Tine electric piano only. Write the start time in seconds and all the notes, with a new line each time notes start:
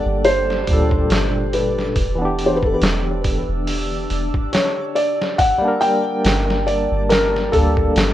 Already playing: G3 A#3 D4 A4
0.63 A#2 G3
0.70 D4 A4
2.15 E3 B3
2.22 D4 G4
5.58 G3 A#3
5.65 D4 A#4
7.49 G3 A#3
7.55 D4 A4